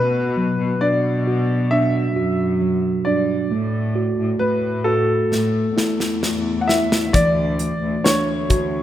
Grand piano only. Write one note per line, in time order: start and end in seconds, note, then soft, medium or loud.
0.00 0.84 B4 medium
0.81 1.74 D5 medium
1.71 2.57 E5 medium
3.05 4.36 D5 medium
4.39 4.86 B4 medium
4.84 6.66 A4 medium
6.61 6.68 F#5 medium
6.67 7.15 E5 medium
7.13 8.07 D5 medium
8.04 8.83 C#5 medium